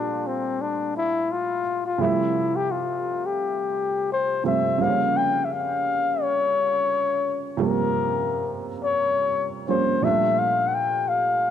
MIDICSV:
0, 0, Header, 1, 3, 480
1, 0, Start_track
1, 0, Tempo, 697674
1, 1377, Time_signature, 4, 2, 24, 8
1, 7915, End_track
2, 0, Start_track
2, 0, Title_t, "Flugelhorn"
2, 0, Program_c, 0, 56
2, 0, Note_on_c, 0, 62, 79
2, 186, Note_on_c, 0, 60, 82
2, 196, Note_off_c, 0, 62, 0
2, 424, Note_on_c, 0, 62, 88
2, 434, Note_off_c, 0, 60, 0
2, 660, Note_off_c, 0, 62, 0
2, 669, Note_on_c, 0, 64, 98
2, 908, Note_on_c, 0, 65, 90
2, 918, Note_off_c, 0, 64, 0
2, 1276, Note_off_c, 0, 65, 0
2, 1279, Note_on_c, 0, 65, 83
2, 1385, Note_on_c, 0, 64, 87
2, 1395, Note_off_c, 0, 65, 0
2, 1762, Note_on_c, 0, 67, 85
2, 1772, Note_off_c, 0, 64, 0
2, 1866, Note_on_c, 0, 65, 81
2, 1877, Note_off_c, 0, 67, 0
2, 2245, Note_on_c, 0, 67, 83
2, 2256, Note_off_c, 0, 65, 0
2, 2824, Note_off_c, 0, 67, 0
2, 2836, Note_on_c, 0, 72, 91
2, 3050, Note_off_c, 0, 72, 0
2, 3072, Note_on_c, 0, 76, 89
2, 3314, Note_on_c, 0, 77, 104
2, 3325, Note_off_c, 0, 76, 0
2, 3555, Note_on_c, 0, 79, 105
2, 3565, Note_off_c, 0, 77, 0
2, 3748, Note_on_c, 0, 76, 62
2, 3758, Note_off_c, 0, 79, 0
2, 3801, Note_on_c, 0, 77, 98
2, 3811, Note_off_c, 0, 76, 0
2, 4277, Note_on_c, 0, 73, 99
2, 4288, Note_off_c, 0, 77, 0
2, 5118, Note_off_c, 0, 73, 0
2, 5235, Note_on_c, 0, 70, 90
2, 5860, Note_off_c, 0, 70, 0
2, 6088, Note_on_c, 0, 73, 99
2, 6532, Note_off_c, 0, 73, 0
2, 6669, Note_on_c, 0, 72, 85
2, 6907, Note_on_c, 0, 76, 94
2, 6918, Note_off_c, 0, 72, 0
2, 7149, Note_on_c, 0, 77, 98
2, 7159, Note_off_c, 0, 76, 0
2, 7345, Note_on_c, 0, 78, 71
2, 7356, Note_off_c, 0, 77, 0
2, 7393, Note_on_c, 0, 79, 95
2, 7403, Note_off_c, 0, 78, 0
2, 7629, Note_on_c, 0, 77, 82
2, 7639, Note_off_c, 0, 79, 0
2, 7915, Note_off_c, 0, 77, 0
2, 7915, End_track
3, 0, Start_track
3, 0, Title_t, "Upright piano"
3, 0, Program_c, 1, 0
3, 0, Control_c, 1, 64, 127
3, 0, Note_on_c, 1, 46, 79
3, 0, Note_on_c, 1, 53, 67
3, 0, Note_on_c, 1, 55, 65
3, 0, Note_on_c, 1, 57, 62
3, 0, Note_on_c, 1, 62, 73
3, 1104, Note_off_c, 1, 46, 0
3, 1107, Note_off_c, 1, 53, 0
3, 1110, Note_off_c, 1, 55, 0
3, 1114, Note_off_c, 1, 57, 0
3, 1117, Note_off_c, 1, 62, 0
3, 1363, Note_on_c, 1, 48, 63
3, 1372, Note_on_c, 1, 53, 63
3, 1379, Note_on_c, 1, 55, 61
3, 1385, Control_c, 1, 64, 0
3, 1385, Note_on_c, 1, 57, 57
3, 1392, Note_on_c, 1, 76, 71
3, 1510, Control_c, 1, 64, 127
3, 3023, Note_off_c, 1, 48, 0
3, 3027, Note_off_c, 1, 53, 0
3, 3030, Note_off_c, 1, 55, 0
3, 3033, Note_off_c, 1, 57, 0
3, 3037, Note_off_c, 1, 76, 0
3, 3053, Note_on_c, 1, 48, 52
3, 3056, Note_on_c, 1, 53, 48
3, 3060, Note_on_c, 1, 55, 45
3, 3062, Note_on_c, 1, 57, 52
3, 3068, Note_on_c, 1, 60, 59
3, 3285, Note_off_c, 1, 53, 0
3, 3287, Note_on_c, 1, 49, 62
3, 3291, Note_off_c, 1, 55, 0
3, 3295, Note_off_c, 1, 48, 0
3, 3296, Note_on_c, 1, 53, 59
3, 3300, Note_off_c, 1, 57, 0
3, 3301, Note_on_c, 1, 55, 63
3, 3302, Note_off_c, 1, 60, 0
3, 3306, Control_c, 1, 64, 0
3, 3309, Note_on_c, 1, 58, 59
3, 3316, Note_on_c, 1, 60, 57
3, 3357, Note_off_c, 1, 60, 0
3, 3362, Note_on_c, 1, 61, 73
3, 3420, Control_c, 1, 64, 127
3, 5184, Note_off_c, 1, 49, 0
3, 5189, Note_off_c, 1, 53, 0
3, 5192, Note_off_c, 1, 55, 0
3, 5196, Note_off_c, 1, 58, 0
3, 5209, Note_on_c, 1, 48, 68
3, 5218, Note_on_c, 1, 53, 60
3, 5222, Note_off_c, 1, 61, 0
3, 5224, Note_on_c, 1, 55, 61
3, 5231, Note_on_c, 1, 58, 60
3, 6625, Note_off_c, 1, 48, 0
3, 6630, Note_off_c, 1, 53, 0
3, 6633, Note_off_c, 1, 55, 0
3, 6637, Note_off_c, 1, 58, 0
3, 6659, Note_on_c, 1, 60, 47
3, 6663, Note_on_c, 1, 53, 43
3, 6666, Note_on_c, 1, 55, 40
3, 6671, Note_on_c, 1, 58, 46
3, 6674, Note_on_c, 1, 61, 54
3, 6887, Note_off_c, 1, 53, 0
3, 6892, Note_on_c, 1, 46, 65
3, 6896, Note_off_c, 1, 55, 0
3, 6897, Note_on_c, 1, 53, 63
3, 6898, Note_off_c, 1, 60, 0
3, 6904, Note_off_c, 1, 58, 0
3, 6904, Control_c, 1, 64, 0
3, 6905, Note_off_c, 1, 61, 0
3, 6906, Note_on_c, 1, 55, 55
3, 6912, Note_on_c, 1, 57, 57
3, 6919, Note_on_c, 1, 62, 73
3, 7022, Control_c, 1, 64, 127
3, 7915, Note_off_c, 1, 46, 0
3, 7915, Note_off_c, 1, 53, 0
3, 7915, Note_off_c, 1, 55, 0
3, 7915, Note_off_c, 1, 57, 0
3, 7915, Note_off_c, 1, 62, 0
3, 7915, End_track
0, 0, End_of_file